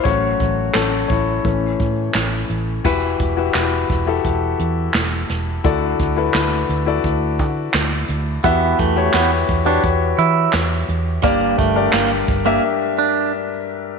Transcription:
<<
  \new Staff \with { instrumentName = "Grand piano" } { \time 4/4 \key e \dorian \tempo 4 = 86 <fis' cis''>4 <cis' a'>8 <e' cis''>4. r4 | <e' fis' g' b'>8 r16 <e' fis' g' b'>8. r16 <e' fis' g' a'>4. r8. | <e' fis' a' d''>8 r16 <e' fis' a' b'>8. r16 <e' fis' a' d''>4. r8. | <fis' g' b' e''>8 r16 <fis' g' b' cis''>8. r16 <fis' g' b' cis''>4. r8. |
<d' g' bes' d''>8 r16 <d' g' bes' d''>8. r16 <d' g' bes' e''>4. r8. | }
  \new Staff \with { instrumentName = "Grand piano" } { \clef bass \time 4/4 \key e \dorian <fis a cis'>2 <e a cis'>8 r4. | e4. r2 r8 | d4. r2 r8 | e4. r2 r8 |
g,4. r2 r8 | }
  \new Staff \with { instrumentName = "Clean electric guitar" } { \time 4/4 \key e \dorian r1 | r1 | r1 | b8 a8 b16 r8 d'16 r8 e'8 r4 |
bes8 a8 bes16 r8 bes16 r8 d'8 r4 | }
  \new Staff \with { instrumentName = "Fingered electric bass" } { \clef bass \time 4/4 \key e \dorian a,,8 a,,8 a,,8 a,,8 a,,8 a,8 a,,8 a,,8 | e,,8 e,,8 e,,8 e,,8 e,,8 e,8 e,,8 e,,8 | d,8 d,8 d,8 d,8 d,8 d8 d,8 d,8 | e,8 e,8 e,8 e,8 e,8 e8 e,8 e,8 |
g,,8 g,,8 g,,8 g,,8 r2 | }
  \new DrumStaff \with { instrumentName = "Drums" } \drummode { \time 4/4 <hh bd>8 <hh bd>8 <hc hh sn>8 <hh bd>8 <hh bd>8 <hh bd>8 <hc hh sn>8 hh8 | <cymc bd>8 <hh bd>8 <hc hh sn>8 <hh bd>8 <hh bd>8 hh8 <hc hh sn>8 <hh sn>8 | <hh bd>8 <hh bd>8 <hc hh sn>8 hh8 <hh bd>8 <hh bd>8 <hc hh sn>8 hh8 | <hh bd>8 <hh bd>8 <hc hh sn>8 <hh bd>8 <hh bd>8 hh8 <hc hh sn>8 hh8 |
<hh bd>8 <hh bd>8 <hc hh sn>8 <hh bd>8 r4 r4 | }
>>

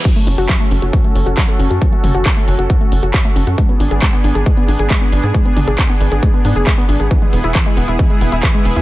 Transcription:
<<
  \new Staff \with { instrumentName = "Supersaw synth" } { \time 4/4 \key fis \minor \tempo 4 = 136 << { <fis' a'>1~ | <fis' a'>1 | <d' gis'>1~ | <d' gis'>1 |
<e' gis'>1 | } \\ { cis'1~ | cis'1 | b1~ | b1~ |
b1 | } >> }
  \new Staff \with { instrumentName = "Synth arpeggio sound" } { \time 4/4 \key fis \minor fis16 a16 cis'16 fis'16 fis16 a16 cis'16 fis'16 fis16 a16 cis'16 fis'16 fis16 a16 cis'16 fis'16 | fis16 a16 cis'16 fis'16 fis16 a16 cis'16 fis'16 fis16 a16 cis'16 fis'16 fis16 a16 cis'16 fis'16 | gis16 b16 d'16 gis'16 gis16 b16 d'16 gis'16 gis16 b16 d'16 gis'16 gis16 b16 d'16 gis'16 | gis16 b16 d'16 gis'16 gis16 b16 d'16 gis'16 gis16 b16 d'16 gis'16 gis16 b16 d'16 gis'16 |
e16 gis16 b16 e'16 e16 gis16 b16 e'16 e16 gis16 b16 e'16 e16 gis16 b16 e'16 | }
  \new Staff \with { instrumentName = "Analog synth bass" } { \clef bass \time 4/4 \key fis \minor r8 fis,,16 fis,,16 r8 fis,,16 fis,,16 r8 fis,,16 fis,,16 r8 fis,,16 fis,16 | r8 fis,,16 fis,,16 r8 fis,,16 fis,,16 r8 fis,,16 fis,,16 r8 fis,,16 fis,16 | r8 gis,,16 gis,,16 r8 gis,,16 gis,,16 r8 gis,,16 gis,,16 r8 gis,,16 gis,16 | r8 gis,,16 gis,,16 r8 gis,,16 gis,,16 r8 gis,16 fis,,16 r8 gis,,16 gis,,16 |
r8 e,,16 e,,16 r8 e,,16 e,,16 r8 e,,16 e,,16 r8 e,,16 e,16 | }
  \new DrumStaff \with { instrumentName = "Drums" } \drummode { \time 4/4 <cymc hh bd>16 hh16 hho16 hh16 <hc hh bd>16 hh16 hho16 hh16 <hh bd>16 hh16 hho16 hh16 <hc hh bd>16 hh16 hho16 hh16 | <hh bd>16 hh16 <hho toml>16 hh16 <hc hh bd>16 hh16 hho16 hh16 <hh bd>16 hh16 hho16 hh16 <hc hh bd>16 hh16 hho16 hh16 | <hh bd>16 hh16 hho16 hh16 <hc hh bd>16 hh16 hho16 hh16 <hh bd>16 hh16 hho16 hh16 <hc hh bd>16 hh16 hho16 hh16 | <hh bd>16 hh16 <hho toml>16 hh16 <hc hh bd>16 hh16 hho16 hh16 <hh bd>16 hh16 hho16 hh16 <hc hh bd>16 hh16 hho16 hh16 |
<hh bd>16 hh16 hho16 hh16 <hc hh bd>16 hh16 hho16 hh16 <hh bd>16 hh16 hho16 hh16 <hc hh bd>16 hh16 hho16 hh16 | }
>>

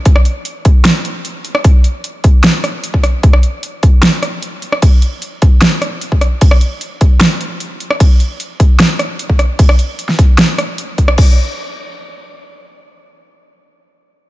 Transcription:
\new DrumStaff \with { instrumentName = "Drums" } \drummode { \time 4/4 \tempo 4 = 151 <hh bd>16 ss16 hh8 hh8 <hh bd>8 <hh sn>8 hh8 hh8 hh16 ss16 | <hh bd>8 hh8 hh8 <hh bd>8 <hh sn>8 <hh ss>8 hh16 bd16 <hh ss>8 | <hh bd>16 ss16 hh8 hh8 <hh bd>8 <hh sn>8 <hh ss>8 hh8 hh16 ss16 | <cymc hh bd>8 hh8 hh8 <hh bd>8 <hh sn>8 <hh ss>8 hh16 bd16 <hh ss>8 |
<cymc hh bd>16 ss16 hh8 hh8 <hh bd>8 <hh sn>8 hh8 hh8 hh16 ss16 | <cymc hh bd>8 hh8 hh8 <hh bd>8 <hh sn>8 <hh ss>8 hh16 bd16 <hh ss>8 | <cymc hh bd>16 ss16 hh8 hh16 sn16 <hh bd>8 <hh sn>8 <hh ss>8 hh8 <hh bd>16 ss16 | <cymc bd>4 r4 r4 r4 |
r4 r4 r4 r4 | }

